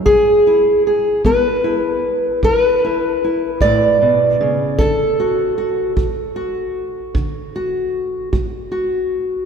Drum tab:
BD |o--o--o--o--|o--o--o--o--|